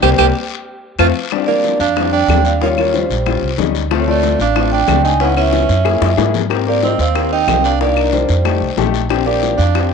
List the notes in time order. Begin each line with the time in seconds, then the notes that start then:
0.02 C2 G3 A#3 C4 G4, cowbell, long guiro, claves
0.18 C2 G3 A#3 C4 G4, cowbell, long guiro, claves
0.99 F2 F3 A3 C4 F4, cowbell, long guiro, claves
1.31 G3 C4 D4, high bongo, long guiro, claves
1.47 G3 A#3 C4 D4 D5, high bongo
1.64 high bongo, short guiro
1.80 F2 D4 F5, high bongo, short guiro
1.96 G3 C4 D4, high bongo, long guiro, claves
2.12 D4 G5
2.28 D#2 G3 C4 D4, high bongo, low bongo, short guiro, claves
2.45 D4 F5, high bongo, short guiro
2.62 G3 A#3 C#4 F4 C#5, high bongo, long guiro
2.77 G3 A#3 C#4 F4 C#5, high bongo, claves
2.94 G3 C5, high bongo, short guiro
3.09 A#1, high bongo, short guiro
3.26 G3 C#4 F4, high bongo, long guiro, claves
3.42 C2
3.58 D2 G3 C#4 D#4, high bongo, low bongo, short guiro
3.75 high bongo, short guiro
3.91 A3 C4 F4, high bongo, long guiro, claves
4.00 A3 C#5
4.07 A3 C4 F4 D5, high bongo
4.23 high bongo, short guiro
4.39 A1 D4 F5, high bongo, short guiro
4.56 A3 C4 F4, high bongo, long guiro, claves
4.72 D4 G5
4.88 C#2 A3 C4 D4, high bongo, low bongo, short guiro, claves
5.04 D#4 G#5, high bongo, short guiro
5.20 B3 C#4 D#4 E4 F#5, high bongo, long guiro
5.36 B3 C#4 E4 E5, high bongo, claves
5.53 high bongo, short guiro
5.69 F#2, high bongo, short guiro
5.85 A#3 E4 G#4, high bongo, long guiro, claves
6.01 F#2, high bongo
6.17 G#2 A#3 E4 G#4, high bongo, short guiro
6.34 low bongo, short guiro
6.50 C4 G4 A#4, high bongo, long guiro, claves
6.66 A#3 C4 G4 A#4 D5, high bongo
6.83 C4 D#5, high bongo, short guiro
6.98 D#2 C4 F5, high bongo, short guiro
7.15 C4 G4 A#4, high bongo, long guiro, claves
7.32 D#4 G5
7.47 C2 C4 G4 A#4, high bongo, low bongo, short guiro, claves
7.64 D4 F5, high bongo, short guiro
7.80 A#3 D4 D#4 A#4 D5, high bongo, long guiro
7.96 D4 D#4 A#4, high bongo, claves
8.12 G3 C5, high bongo, short guiro
8.29 F2, high bongo, short guiro
8.45 A3 D#4 G4, high bongo, long guiro, claves
8.61 C2
8.77 A#1 A3 D#4 G4, high bongo, low bongo, short guiro
8.94 high bongo, short guiro
9.09 C4 D4 G4, high bongo, long guiro, claves
9.26 A#3 C4 D4 G4 D5, high bongo
9.43 high bongo, short guiro
9.57 F2 D4 F5, high bongo, short guiro
9.75 C4 D4 G4, high bongo, long guiro, claves